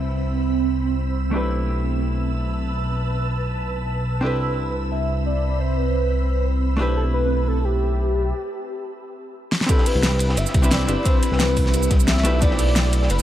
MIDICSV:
0, 0, Header, 1, 6, 480
1, 0, Start_track
1, 0, Tempo, 340909
1, 206, Time_signature, 4, 2, 24, 8
1, 18614, End_track
2, 0, Start_track
2, 0, Title_t, "Ambient pad"
2, 0, Program_c, 0, 92
2, 0, Note_on_c, 0, 60, 75
2, 0, Note_on_c, 0, 83, 73
2, 0, Note_on_c, 0, 88, 89
2, 1850, Note_off_c, 0, 83, 0
2, 1851, Note_off_c, 0, 60, 0
2, 1883, Note_on_c, 0, 71, 81
2, 1883, Note_on_c, 0, 81, 72
2, 5923, Note_off_c, 0, 71, 0
2, 5923, Note_off_c, 0, 81, 0
2, 5963, Note_on_c, 0, 83, 73
2, 5964, Note_on_c, 0, 60, 78
2, 9510, Note_off_c, 0, 88, 0
2, 9528, Note_off_c, 0, 83, 0
2, 9529, Note_off_c, 0, 60, 0
2, 9562, Note_on_c, 0, 71, 75
2, 9562, Note_on_c, 0, 81, 68
2, 9562, Note_on_c, 0, 88, 84
2, 11702, Note_off_c, 0, 71, 0
2, 11702, Note_off_c, 0, 81, 0
2, 11702, Note_off_c, 0, 88, 0
2, 13645, Note_on_c, 0, 60, 83
2, 13645, Note_on_c, 0, 83, 77
2, 13645, Note_on_c, 0, 88, 94
2, 17209, Note_off_c, 0, 60, 0
2, 17209, Note_off_c, 0, 83, 0
2, 17246, Note_on_c, 0, 71, 84
2, 17246, Note_on_c, 0, 81, 80
2, 18614, Note_off_c, 0, 71, 0
2, 18614, Note_off_c, 0, 81, 0
2, 18614, Note_off_c, 0, 88, 0
2, 18614, End_track
3, 0, Start_track
3, 0, Title_t, "Soft synth lead"
3, 0, Program_c, 1, 80
3, 5967, Note_on_c, 1, 69, 88
3, 6207, Note_on_c, 1, 71, 100
3, 6228, Note_off_c, 1, 69, 0
3, 6915, Note_off_c, 1, 71, 0
3, 6923, Note_on_c, 1, 76, 99
3, 7370, Note_off_c, 1, 76, 0
3, 7407, Note_on_c, 1, 74, 93
3, 7889, Note_on_c, 1, 72, 98
3, 7910, Note_off_c, 1, 74, 0
3, 8127, Note_on_c, 1, 71, 89
3, 8148, Note_off_c, 1, 72, 0
3, 9086, Note_off_c, 1, 71, 0
3, 9806, Note_on_c, 1, 69, 99
3, 9914, Note_off_c, 1, 69, 0
3, 10046, Note_on_c, 1, 71, 108
3, 10527, Note_on_c, 1, 69, 103
3, 10548, Note_off_c, 1, 71, 0
3, 10768, Note_on_c, 1, 67, 89
3, 10789, Note_off_c, 1, 69, 0
3, 13166, Note_off_c, 1, 67, 0
3, 13649, Note_on_c, 1, 69, 102
3, 13890, Note_on_c, 1, 71, 110
3, 13912, Note_off_c, 1, 69, 0
3, 14613, Note_on_c, 1, 76, 103
3, 14634, Note_off_c, 1, 71, 0
3, 15088, Note_on_c, 1, 74, 104
3, 15109, Note_off_c, 1, 76, 0
3, 15559, Note_off_c, 1, 74, 0
3, 15567, Note_on_c, 1, 72, 103
3, 15810, Note_on_c, 1, 71, 106
3, 15831, Note_off_c, 1, 72, 0
3, 16768, Note_off_c, 1, 71, 0
3, 17011, Note_on_c, 1, 76, 106
3, 17488, Note_on_c, 1, 74, 110
3, 17509, Note_off_c, 1, 76, 0
3, 18440, Note_off_c, 1, 74, 0
3, 18448, Note_on_c, 1, 71, 91
3, 18614, Note_off_c, 1, 71, 0
3, 18614, End_track
4, 0, Start_track
4, 0, Title_t, "Hollow-body jazz guitar"
4, 0, Program_c, 2, 26
4, 0, Note_on_c, 2, 60, 65
4, 0, Note_on_c, 2, 62, 58
4, 0, Note_on_c, 2, 64, 61
4, 0, Note_on_c, 2, 67, 61
4, 0, Note_on_c, 2, 71, 76
4, 1840, Note_off_c, 2, 60, 0
4, 1847, Note_on_c, 2, 57, 72
4, 1849, Note_off_c, 2, 62, 0
4, 1858, Note_off_c, 2, 64, 0
4, 1865, Note_on_c, 2, 62, 62
4, 1868, Note_off_c, 2, 67, 0
4, 1876, Note_off_c, 2, 71, 0
4, 1884, Note_on_c, 2, 64, 68
4, 1903, Note_on_c, 2, 67, 68
4, 1921, Note_on_c, 2, 71, 82
4, 5679, Note_off_c, 2, 57, 0
4, 5689, Note_off_c, 2, 62, 0
4, 5698, Note_off_c, 2, 64, 0
4, 5707, Note_off_c, 2, 67, 0
4, 5716, Note_off_c, 2, 71, 0
4, 5927, Note_on_c, 2, 60, 63
4, 5946, Note_on_c, 2, 62, 59
4, 5964, Note_on_c, 2, 64, 57
4, 5982, Note_on_c, 2, 67, 61
4, 6001, Note_on_c, 2, 71, 75
4, 9519, Note_off_c, 2, 60, 0
4, 9526, Note_on_c, 2, 57, 73
4, 9529, Note_off_c, 2, 62, 0
4, 9538, Note_off_c, 2, 64, 0
4, 9544, Note_on_c, 2, 62, 64
4, 9547, Note_off_c, 2, 67, 0
4, 9557, Note_off_c, 2, 71, 0
4, 9563, Note_on_c, 2, 64, 68
4, 9581, Note_on_c, 2, 67, 67
4, 9599, Note_on_c, 2, 71, 83
4, 11706, Note_off_c, 2, 57, 0
4, 11715, Note_off_c, 2, 62, 0
4, 11724, Note_off_c, 2, 64, 0
4, 11733, Note_off_c, 2, 67, 0
4, 11742, Note_off_c, 2, 71, 0
4, 13608, Note_on_c, 2, 60, 83
4, 13626, Note_on_c, 2, 62, 74
4, 13644, Note_on_c, 2, 64, 80
4, 13663, Note_on_c, 2, 67, 77
4, 13681, Note_on_c, 2, 71, 88
4, 14924, Note_off_c, 2, 60, 0
4, 14933, Note_off_c, 2, 62, 0
4, 14942, Note_off_c, 2, 64, 0
4, 14952, Note_off_c, 2, 67, 0
4, 14953, Note_on_c, 2, 60, 96
4, 14961, Note_off_c, 2, 71, 0
4, 14962, Note_on_c, 2, 62, 85
4, 14972, Note_on_c, 2, 64, 86
4, 14981, Note_on_c, 2, 67, 87
4, 14990, Note_on_c, 2, 71, 105
4, 15288, Note_off_c, 2, 60, 0
4, 15293, Note_off_c, 2, 62, 0
4, 15297, Note_off_c, 2, 64, 0
4, 15302, Note_off_c, 2, 67, 0
4, 15304, Note_on_c, 2, 60, 84
4, 15307, Note_off_c, 2, 71, 0
4, 15313, Note_on_c, 2, 62, 76
4, 15323, Note_on_c, 2, 64, 77
4, 15332, Note_on_c, 2, 67, 76
4, 15341, Note_on_c, 2, 71, 91
4, 15511, Note_off_c, 2, 60, 0
4, 15528, Note_off_c, 2, 62, 0
4, 15528, Note_on_c, 2, 60, 80
4, 15537, Note_off_c, 2, 64, 0
4, 15542, Note_off_c, 2, 67, 0
4, 15545, Note_on_c, 2, 62, 69
4, 15546, Note_off_c, 2, 71, 0
4, 15564, Note_on_c, 2, 64, 72
4, 15583, Note_on_c, 2, 67, 73
4, 15601, Note_on_c, 2, 71, 84
4, 17200, Note_off_c, 2, 60, 0
4, 17208, Note_off_c, 2, 62, 0
4, 17218, Note_off_c, 2, 64, 0
4, 17225, Note_on_c, 2, 57, 93
4, 17227, Note_off_c, 2, 67, 0
4, 17235, Note_on_c, 2, 62, 82
4, 17236, Note_off_c, 2, 71, 0
4, 17244, Note_on_c, 2, 64, 80
4, 17253, Note_on_c, 2, 67, 87
4, 17262, Note_on_c, 2, 71, 97
4, 17430, Note_off_c, 2, 57, 0
4, 17447, Note_on_c, 2, 57, 81
4, 17448, Note_off_c, 2, 62, 0
4, 17458, Note_off_c, 2, 64, 0
4, 17462, Note_off_c, 2, 67, 0
4, 17465, Note_on_c, 2, 62, 80
4, 17467, Note_off_c, 2, 71, 0
4, 17484, Note_on_c, 2, 64, 73
4, 17502, Note_on_c, 2, 67, 78
4, 17520, Note_on_c, 2, 71, 96
4, 18614, Note_off_c, 2, 57, 0
4, 18614, Note_off_c, 2, 62, 0
4, 18614, Note_off_c, 2, 64, 0
4, 18614, Note_off_c, 2, 67, 0
4, 18614, Note_off_c, 2, 71, 0
4, 18614, End_track
5, 0, Start_track
5, 0, Title_t, "Analog synth bass"
5, 0, Program_c, 3, 38
5, 0, Note_on_c, 3, 36, 83
5, 1863, Note_off_c, 3, 36, 0
5, 1884, Note_on_c, 3, 35, 83
5, 5942, Note_off_c, 3, 35, 0
5, 5963, Note_on_c, 3, 36, 85
5, 9542, Note_off_c, 3, 36, 0
5, 9565, Note_on_c, 3, 35, 84
5, 11725, Note_off_c, 3, 35, 0
5, 14013, Note_on_c, 3, 36, 99
5, 14587, Note_off_c, 3, 36, 0
5, 14606, Note_on_c, 3, 31, 87
5, 14721, Note_off_c, 3, 31, 0
5, 14846, Note_on_c, 3, 36, 97
5, 15308, Note_off_c, 3, 36, 0
5, 15325, Note_on_c, 3, 31, 85
5, 15441, Note_off_c, 3, 31, 0
5, 15933, Note_on_c, 3, 36, 93
5, 16507, Note_off_c, 3, 36, 0
5, 16526, Note_on_c, 3, 36, 89
5, 16743, Note_off_c, 3, 36, 0
5, 16766, Note_on_c, 3, 36, 78
5, 17228, Note_off_c, 3, 36, 0
5, 17244, Note_on_c, 3, 35, 89
5, 17833, Note_off_c, 3, 35, 0
5, 17853, Note_on_c, 3, 35, 91
5, 18427, Note_off_c, 3, 35, 0
5, 18444, Note_on_c, 3, 30, 91
5, 18560, Note_off_c, 3, 30, 0
5, 18614, End_track
6, 0, Start_track
6, 0, Title_t, "Drums"
6, 13404, Note_on_c, 9, 38, 85
6, 13534, Note_off_c, 9, 38, 0
6, 13534, Note_on_c, 9, 38, 83
6, 13637, Note_on_c, 9, 51, 96
6, 13645, Note_on_c, 9, 42, 83
6, 13645, Note_on_c, 9, 69, 53
6, 13646, Note_on_c, 9, 36, 118
6, 13674, Note_off_c, 9, 38, 0
6, 13768, Note_on_c, 9, 38, 56
6, 13778, Note_off_c, 9, 51, 0
6, 13786, Note_off_c, 9, 42, 0
6, 13786, Note_off_c, 9, 69, 0
6, 13787, Note_off_c, 9, 36, 0
6, 13886, Note_on_c, 9, 42, 96
6, 13886, Note_on_c, 9, 69, 29
6, 13890, Note_on_c, 9, 46, 82
6, 13909, Note_off_c, 9, 38, 0
6, 14016, Note_on_c, 9, 51, 44
6, 14027, Note_off_c, 9, 42, 0
6, 14027, Note_off_c, 9, 69, 0
6, 14030, Note_off_c, 9, 46, 0
6, 14124, Note_off_c, 9, 51, 0
6, 14124, Note_on_c, 9, 51, 81
6, 14126, Note_on_c, 9, 38, 122
6, 14126, Note_on_c, 9, 42, 84
6, 14126, Note_on_c, 9, 69, 52
6, 14132, Note_off_c, 9, 38, 0
6, 14132, Note_on_c, 9, 38, 108
6, 14246, Note_off_c, 9, 38, 0
6, 14246, Note_on_c, 9, 38, 53
6, 14265, Note_off_c, 9, 51, 0
6, 14267, Note_off_c, 9, 42, 0
6, 14267, Note_off_c, 9, 69, 0
6, 14349, Note_on_c, 9, 51, 77
6, 14367, Note_on_c, 9, 42, 100
6, 14367, Note_on_c, 9, 69, 28
6, 14387, Note_off_c, 9, 38, 0
6, 14486, Note_on_c, 9, 38, 60
6, 14490, Note_off_c, 9, 51, 0
6, 14508, Note_off_c, 9, 42, 0
6, 14508, Note_off_c, 9, 69, 0
6, 14606, Note_on_c, 9, 42, 81
6, 14606, Note_on_c, 9, 51, 88
6, 14606, Note_on_c, 9, 69, 53
6, 14626, Note_off_c, 9, 38, 0
6, 14734, Note_off_c, 9, 69, 0
6, 14734, Note_on_c, 9, 69, 58
6, 14744, Note_on_c, 9, 38, 37
6, 14747, Note_off_c, 9, 42, 0
6, 14747, Note_off_c, 9, 51, 0
6, 14845, Note_on_c, 9, 51, 75
6, 14846, Note_on_c, 9, 36, 108
6, 14846, Note_on_c, 9, 42, 91
6, 14875, Note_off_c, 9, 69, 0
6, 14884, Note_off_c, 9, 38, 0
6, 14975, Note_on_c, 9, 69, 63
6, 14982, Note_off_c, 9, 51, 0
6, 14982, Note_on_c, 9, 51, 44
6, 14987, Note_off_c, 9, 36, 0
6, 14987, Note_off_c, 9, 42, 0
6, 15078, Note_off_c, 9, 51, 0
6, 15078, Note_on_c, 9, 51, 93
6, 15086, Note_off_c, 9, 69, 0
6, 15086, Note_on_c, 9, 38, 119
6, 15086, Note_on_c, 9, 42, 82
6, 15086, Note_on_c, 9, 69, 49
6, 15089, Note_off_c, 9, 38, 0
6, 15089, Note_on_c, 9, 38, 108
6, 15210, Note_off_c, 9, 38, 0
6, 15210, Note_on_c, 9, 38, 56
6, 15219, Note_off_c, 9, 51, 0
6, 15227, Note_off_c, 9, 42, 0
6, 15227, Note_off_c, 9, 69, 0
6, 15325, Note_on_c, 9, 51, 62
6, 15327, Note_on_c, 9, 42, 99
6, 15327, Note_on_c, 9, 69, 31
6, 15351, Note_off_c, 9, 38, 0
6, 15466, Note_off_c, 9, 51, 0
6, 15468, Note_off_c, 9, 42, 0
6, 15468, Note_off_c, 9, 69, 0
6, 15566, Note_on_c, 9, 36, 118
6, 15566, Note_on_c, 9, 42, 86
6, 15566, Note_on_c, 9, 69, 50
6, 15575, Note_on_c, 9, 51, 91
6, 15707, Note_off_c, 9, 36, 0
6, 15707, Note_off_c, 9, 42, 0
6, 15707, Note_off_c, 9, 69, 0
6, 15716, Note_off_c, 9, 51, 0
6, 15807, Note_on_c, 9, 42, 99
6, 15807, Note_on_c, 9, 69, 28
6, 15808, Note_on_c, 9, 51, 73
6, 15943, Note_on_c, 9, 38, 46
6, 15948, Note_off_c, 9, 42, 0
6, 15948, Note_off_c, 9, 69, 0
6, 15949, Note_off_c, 9, 51, 0
6, 16038, Note_off_c, 9, 38, 0
6, 16038, Note_on_c, 9, 38, 123
6, 16047, Note_off_c, 9, 38, 0
6, 16047, Note_on_c, 9, 38, 127
6, 16047, Note_on_c, 9, 42, 87
6, 16047, Note_on_c, 9, 69, 52
6, 16051, Note_on_c, 9, 51, 90
6, 16188, Note_off_c, 9, 38, 0
6, 16188, Note_off_c, 9, 42, 0
6, 16188, Note_off_c, 9, 69, 0
6, 16191, Note_off_c, 9, 51, 0
6, 16286, Note_on_c, 9, 36, 65
6, 16287, Note_on_c, 9, 46, 74
6, 16287, Note_on_c, 9, 51, 71
6, 16287, Note_on_c, 9, 69, 28
6, 16416, Note_on_c, 9, 38, 34
6, 16427, Note_off_c, 9, 36, 0
6, 16428, Note_off_c, 9, 46, 0
6, 16428, Note_off_c, 9, 51, 0
6, 16428, Note_off_c, 9, 69, 0
6, 16525, Note_on_c, 9, 51, 87
6, 16527, Note_on_c, 9, 42, 84
6, 16527, Note_on_c, 9, 69, 50
6, 16557, Note_off_c, 9, 38, 0
6, 16655, Note_off_c, 9, 69, 0
6, 16655, Note_on_c, 9, 69, 60
6, 16666, Note_off_c, 9, 51, 0
6, 16667, Note_off_c, 9, 42, 0
6, 16762, Note_on_c, 9, 38, 48
6, 16765, Note_on_c, 9, 42, 96
6, 16766, Note_on_c, 9, 36, 107
6, 16767, Note_on_c, 9, 51, 68
6, 16796, Note_off_c, 9, 69, 0
6, 16894, Note_on_c, 9, 69, 61
6, 16902, Note_off_c, 9, 38, 0
6, 16906, Note_off_c, 9, 42, 0
6, 16907, Note_off_c, 9, 36, 0
6, 16908, Note_off_c, 9, 51, 0
6, 17005, Note_off_c, 9, 69, 0
6, 17005, Note_on_c, 9, 38, 124
6, 17005, Note_on_c, 9, 42, 86
6, 17005, Note_on_c, 9, 69, 50
6, 17008, Note_on_c, 9, 51, 97
6, 17009, Note_off_c, 9, 38, 0
6, 17009, Note_on_c, 9, 38, 102
6, 17133, Note_off_c, 9, 38, 0
6, 17133, Note_on_c, 9, 38, 38
6, 17136, Note_off_c, 9, 38, 0
6, 17136, Note_on_c, 9, 38, 36
6, 17146, Note_off_c, 9, 42, 0
6, 17146, Note_off_c, 9, 69, 0
6, 17149, Note_off_c, 9, 51, 0
6, 17244, Note_off_c, 9, 38, 0
6, 17244, Note_on_c, 9, 38, 45
6, 17245, Note_on_c, 9, 42, 110
6, 17245, Note_on_c, 9, 69, 31
6, 17250, Note_on_c, 9, 51, 66
6, 17385, Note_off_c, 9, 38, 0
6, 17386, Note_off_c, 9, 42, 0
6, 17386, Note_off_c, 9, 69, 0
6, 17391, Note_off_c, 9, 51, 0
6, 17485, Note_on_c, 9, 42, 83
6, 17485, Note_on_c, 9, 69, 50
6, 17486, Note_on_c, 9, 36, 125
6, 17497, Note_on_c, 9, 51, 93
6, 17610, Note_on_c, 9, 38, 58
6, 17626, Note_off_c, 9, 42, 0
6, 17626, Note_off_c, 9, 69, 0
6, 17627, Note_off_c, 9, 36, 0
6, 17638, Note_off_c, 9, 51, 0
6, 17725, Note_on_c, 9, 42, 97
6, 17725, Note_on_c, 9, 69, 27
6, 17729, Note_on_c, 9, 46, 86
6, 17750, Note_off_c, 9, 38, 0
6, 17858, Note_on_c, 9, 51, 43
6, 17866, Note_off_c, 9, 42, 0
6, 17866, Note_off_c, 9, 69, 0
6, 17870, Note_off_c, 9, 46, 0
6, 17963, Note_off_c, 9, 51, 0
6, 17963, Note_on_c, 9, 51, 92
6, 17965, Note_on_c, 9, 38, 127
6, 17965, Note_on_c, 9, 42, 85
6, 17965, Note_on_c, 9, 69, 50
6, 18091, Note_off_c, 9, 38, 0
6, 18091, Note_on_c, 9, 38, 49
6, 18104, Note_off_c, 9, 51, 0
6, 18105, Note_off_c, 9, 42, 0
6, 18105, Note_off_c, 9, 69, 0
6, 18205, Note_on_c, 9, 42, 94
6, 18205, Note_on_c, 9, 69, 28
6, 18208, Note_on_c, 9, 51, 62
6, 18232, Note_off_c, 9, 38, 0
6, 18339, Note_on_c, 9, 38, 56
6, 18346, Note_off_c, 9, 42, 0
6, 18346, Note_off_c, 9, 69, 0
6, 18348, Note_off_c, 9, 51, 0
6, 18444, Note_on_c, 9, 42, 87
6, 18444, Note_on_c, 9, 69, 50
6, 18450, Note_on_c, 9, 51, 90
6, 18480, Note_off_c, 9, 38, 0
6, 18567, Note_on_c, 9, 38, 41
6, 18585, Note_off_c, 9, 42, 0
6, 18585, Note_off_c, 9, 69, 0
6, 18591, Note_off_c, 9, 51, 0
6, 18614, Note_off_c, 9, 38, 0
6, 18614, End_track
0, 0, End_of_file